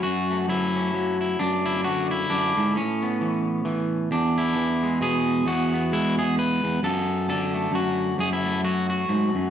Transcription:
Already playing: F#3
0.03 F#2 F#4
0.30 A3
0.48 F#3 E4
0.76 C#4
0.94 F#3
1.21 E4
1.39 F#2 D4
1.66 E4
1.84 D3 F#4
2.11 E4
2.30 F#2 D4
2.57 G#2
2.75 A2 C#4
3.02 B3
3.21 E3
3.65 E3
4.11 E2 D4
4.38 E4
4.56 E3
4.83 G#3
5.01 B2 G#4
5.45 E2 F#4
5.74 B3
5.92 G#3 E4
6.19 G#4
6.39 B4
6.64 E2
6.83 F#2 A4
7.28 D3 A4
7.54 A3
7.72 F#2 F#4
8.18 F#2 G#4
8.33 E4
8.45 A3
8.64 F#3 F#4
8.90 F#4
9.09 G#2
9.35 F#2

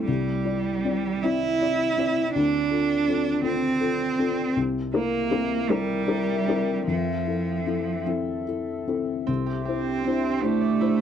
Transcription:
Already playing: C4 E4 A4
0.06 C2 G3 C4 E4 D5
0.44 E4 D5
0.85 C4 E4 D5
1.23 C4 E4 D5
1.61 E4 D5
1.98 C4 E4 D5
2.34 D2 D4 F4
2.70 F4 A4
3.08 C4 F4 A4
3.43 C4 F4 A4
3.80 F4 A4
4.19 C4 F4 A4
4.55 C2 C4 A#4 E5
4.93 A#3 E4 A#4
5.30 C4 E4 A#4
5.69 G3 C4 E4 A#4
6.08 E4 A#4
6.47 C4 E4 A#4
6.87 F2 F3 A4
7.27 E4 A4
7.66 C4 E4 A4
8.06 C4 E4 A4
8.47 E4 A4
8.87 C4 E4 A4
9.27 C2 C4 D4 G4 E5
9.46 G4
9.65 C4 E4 G4 C5
10.04 C4 D4 E4 C5
10.24 C6
10.42 A3 D4 E4 G4 C5
10.61 D5
10.81 E4 C5

